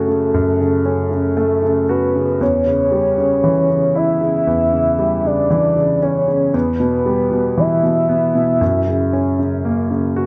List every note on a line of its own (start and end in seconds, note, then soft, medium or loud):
0.00 0.33 F#2 medium
0.00 0.08 C#3 soft
0.00 1.33 A3 soft
0.00 0.82 C#4 soft
0.00 1.85 F#4 soft
0.00 1.38 A4 medium
0.08 0.59 C#3 soft
0.34 2.37 F#2 soft
0.60 1.10 C#3 soft
0.85 2.37 C#4 soft
1.11 1.61 C#3 soft
1.37 2.37 A3 soft
1.37 1.92 A4 medium
1.63 2.14 C#3 soft
1.89 2.39 F#4 soft
1.89 2.41 B4 medium
2.16 2.40 C#3 soft
2.41 4.45 E2 soft
2.41 3.99 C#5 medium
2.67 3.16 C#3 soft
2.92 4.95 G3 soft
3.18 3.68 C#3 soft
3.44 5.47 E3 soft
3.70 4.19 C#3 soft
3.95 5.98 E4 soft
3.95 5.28 E5 loud
4.21 4.71 C#3 soft
4.47 6.50 E2 soft
4.73 5.23 C#3 soft
4.99 6.50 G3 soft
5.24 5.75 C#3 soft
5.24 6.05 D5 medium
5.50 6.51 E3 soft
5.76 6.26 C#3 soft
6.02 6.53 C#4 soft
6.02 6.54 C#5 medium
6.28 6.53 C#3 soft
6.54 8.57 E2 soft
6.54 7.61 B4 medium
6.80 7.30 B2 soft
7.06 8.57 G3 soft
7.31 7.82 B2 soft
7.57 8.58 E3 soft
7.57 9.65 E5 medium
7.83 8.34 B2 soft
8.09 8.59 B3 soft
8.35 8.60 B2 soft
8.61 10.26 F#2 soft
8.87 9.38 C#3 soft
9.13 10.26 C#4 soft
9.39 9.89 C#3 soft
9.65 10.26 A#3 soft
9.91 10.26 C#3 soft
10.16 10.26 F#4 soft